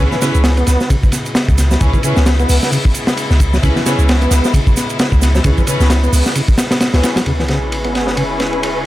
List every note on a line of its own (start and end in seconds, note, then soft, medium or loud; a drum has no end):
0.00 7.23 C#3 medium
0.00 7.23 G#3 medium
0.00 7.23 B3 medium
0.00 7.23 E4 medium
0.11 0.17 E3 medium
0.11 snare soft
0.11 shaker soft
0.21 0.32 C#3 medium
0.21 0.31 C#4 medium
0.21 0.31 E4 medium
0.21 0.31 G#4 medium
0.21 0.31 B4 loud
0.21 snare medium
0.21 ride medium
0.21 shaker medium
0.35 0.63 C#2 medium
0.35 shaker soft
0.44 snare loud
0.44 ride medium
0.44 shaker soft
0.57 0.89 B3 loud
0.57 ride soft
0.57 shaker soft
0.67 0.77 C#2 medium
0.67 snare soft
0.67 ride medium
0.67 shaker medium
0.80 snare soft
0.80 shaker soft
0.90 1.01 G#1 soft
0.90 0.96 C#3 medium
0.90 kick loud
0.90 ride medium
0.90 shaker soft
1.03 1.11 G#1 medium
1.03 kick medium
1.03 shaker soft
1.12 snare soft
1.12 ride medium
1.12 shaker medium
1.26 ride soft
1.26 shaker soft
1.35 snare loud
1.35 ride medium
1.35 shaker soft
1.48 1.77 C#2 medium
1.48 kick medium
1.48 shaker soft
1.58 snare soft
1.58 ride medium
1.58 shaker medium
1.71 1.76 F#3 medium
1.71 snare medium
1.71 shaker soft
1.81 1.91 C#2 loud
1.81 1.87 C#3 medium
1.81 1.96 C#4 medium
1.81 1.96 E4 medium
1.81 1.96 G#4 medium
1.81 1.96 B4 medium
1.81 kick loud
1.81 ride medium
1.81 shaker soft
1.93 1.98 E3 medium
1.93 kick medium
1.93 shaker soft
2.03 2.14 C#3 medium
2.03 2.13 C#4 medium
2.03 2.13 E4 medium
2.03 2.13 G#4 medium
2.03 2.13 B4 loud
2.03 ride medium
2.03 shaker medium
2.16 2.45 C#2 medium
2.16 snare medium
2.16 shaker soft
2.26 snare loud
2.26 ride medium
2.26 shaker soft
2.39 2.71 B3 loud
2.39 shaker soft
2.49 2.59 C#2 medium
2.49 open hi-hat medium
2.49 shaker medium
2.62 snare medium
2.62 shaker soft
2.72 2.78 C#3 medium
2.72 ride medium
2.72 shaker soft
2.85 2.92 G#1 medium
2.85 kick loud
2.85 shaker soft
2.94 ride medium
2.94 shaker medium
3.07 snare loud
3.07 shaker soft
3.17 ride medium
3.17 shaker soft
3.30 3.59 C#2 medium
3.30 snare soft
3.30 shaker soft
3.40 kick loud
3.40 ride medium
3.40 shaker medium
3.53 3.58 F#3 medium
3.53 snare soft
3.53 shaker soft
3.63 3.73 C#2 loud
3.63 3.69 C#3 medium
3.63 3.72 C#4 medium
3.63 3.72 E4 medium
3.63 3.72 G#4 medium
3.63 3.72 B4 loud
3.63 kick loud
3.63 ride medium
3.63 shaker soft
3.76 3.81 E3 medium
3.76 snare soft
3.76 shaker soft
3.85 3.96 C#3 medium
3.85 3.95 C#4 medium
3.85 3.95 E4 medium
3.85 3.95 G#4 medium
3.85 3.95 B4 loud
3.85 snare medium
3.85 ride medium
3.85 shaker medium
3.99 4.27 C#2 medium
3.99 shaker soft
4.09 snare loud
4.09 ride medium
4.09 shaker soft
4.22 4.53 B3 loud
4.22 ride soft
4.22 shaker soft
4.31 4.41 C#2 medium
4.31 snare soft
4.31 ride medium
4.31 shaker medium
4.44 snare medium
4.44 shaker soft
4.54 4.64 G#1 soft
4.54 4.60 C#3 medium
4.54 kick loud
4.54 ride medium
4.54 shaker soft
4.67 4.74 G#1 medium
4.67 kick medium
4.67 shaker soft
4.77 snare soft
4.77 ride medium
4.77 shaker medium
4.90 ride soft
4.90 shaker soft
4.99 snare loud
4.99 ride medium
4.99 shaker soft
5.12 5.41 C#2 medium
5.12 kick medium
5.12 shaker soft
5.22 snare soft
5.22 ride medium
5.22 shaker medium
5.35 5.40 F#3 medium
5.35 snare soft
5.35 shaker soft
5.44 5.54 C#2 loud
5.44 5.51 C#3 medium
5.44 5.59 C#4 medium
5.44 5.59 E4 medium
5.44 5.59 G#4 medium
5.44 5.59 B4 medium
5.44 kick loud
5.44 ride medium
5.44 shaker soft
5.58 5.62 E3 medium
5.58 kick loud
5.58 shaker soft
5.67 5.77 C#3 medium
5.67 5.77 C#4 medium
5.67 5.77 E4 medium
5.67 5.77 G#4 medium
5.67 5.77 B4 loud
5.67 ride medium
5.67 shaker medium
5.80 6.09 C#2 medium
5.80 snare soft
5.80 shaker soft
5.90 snare loud
5.90 ride medium
5.90 shaker soft
6.03 6.35 B3 loud
6.03 shaker soft
6.13 6.22 C#2 medium
6.13 open hi-hat medium
6.13 shaker medium
6.26 snare medium
6.26 shaker soft
6.35 6.42 C#3 medium
6.35 ride medium
6.35 shaker soft
6.48 6.56 G#1 medium
6.48 kick loud
6.48 shaker soft
6.58 snare loud
6.58 ride medium
6.58 shaker medium
6.71 snare loud
6.71 ride medium
6.71 shaker soft
6.80 snare loud
6.80 ride medium
6.80 shaker soft
6.93 7.01 C#2 medium
6.93 7.06 C#4 medium
6.93 7.06 E4 medium
6.93 7.06 G#4 medium
6.93 7.06 B4 medium
6.93 snare medium
6.93 ride medium
6.93 shaker soft
7.03 snare loud
7.03 ride medium
7.03 shaker medium
7.16 7.21 F#3 medium
7.16 snare loud
7.16 ride medium
7.16 shaker soft
7.26 8.86 C#3 medium
7.26 7.33 C#3 medium
7.26 8.86 G#3 medium
7.26 8.86 B3 medium
7.26 8.86 C#4 medium
7.26 8.86 E4 medium
7.26 8.86 G#4 medium
7.26 8.86 B4 medium
7.26 ride medium
7.26 sub drop medium
7.39 7.44 E3 medium
7.39 snare soft
7.48 7.59 C#3 medium
7.48 snare medium
7.48 ride medium
7.72 ride medium
7.84 8.16 B3 loud
7.84 ride soft
7.95 snare soft
7.95 ride medium
8.07 snare medium
8.17 8.23 C#3 medium
8.17 ride medium
8.40 snare soft
8.40 ride medium
8.53 ride soft
8.63 ride medium